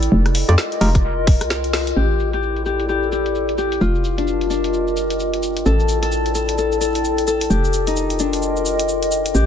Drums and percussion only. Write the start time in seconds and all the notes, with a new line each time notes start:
0.03 closed hi-hat
0.26 cross-stick, closed hi-hat
0.35 open hi-hat
0.49 closed hi-hat
0.58 snare
0.72 closed hi-hat
0.81 open hi-hat
0.95 kick, cross-stick, closed hi-hat
1.27 kick, open hi-hat
1.41 cross-stick, closed hi-hat
1.50 snare
1.64 closed hi-hat
1.73 snare, open hi-hat
1.87 closed hi-hat
1.96 shaker
2.11 shaker
2.20 shaker
2.33 closed hi-hat, shaker
2.43 shaker
2.56 closed hi-hat, shaker
2.66 shaker
2.80 closed hi-hat, shaker
2.89 shaker
3.03 shaker
3.12 shaker
3.26 closed hi-hat, shaker
3.35 shaker
3.49 closed hi-hat, shaker
3.58 shaker
3.72 closed hi-hat, shaker
3.81 shaker
3.95 shaker
4.04 shaker
4.18 closed hi-hat, shaker
4.27 shaker
4.41 closed hi-hat, shaker
4.50 shaker
4.64 closed hi-hat, shaker
4.74 shaker
4.87 shaker
4.97 shaker
5.10 closed hi-hat, shaker
5.20 shaker
5.34 closed hi-hat, shaker
5.43 shaker
5.57 closed hi-hat, shaker
5.66 shaker
5.80 shaker
5.89 shaker
6.03 closed hi-hat, shaker
6.12 shaker
6.26 closed hi-hat, shaker
6.35 shaker
6.49 closed hi-hat, shaker
6.58 shaker
6.72 shaker
6.81 shaker
6.95 closed hi-hat, shaker
7.04 shaker
7.18 closed hi-hat, shaker
7.27 shaker
7.41 closed hi-hat, shaker
7.50 shaker
7.64 shaker
7.73 shaker
7.87 closed hi-hat, shaker
7.96 shaker
8.10 closed hi-hat, shaker
8.19 shaker
8.33 closed hi-hat, shaker
8.42 shaker
8.56 shaker
8.66 shaker
8.79 closed hi-hat, shaker
8.89 shaker
9.03 closed hi-hat, shaker
9.12 shaker
9.26 closed hi-hat, shaker
9.35 shaker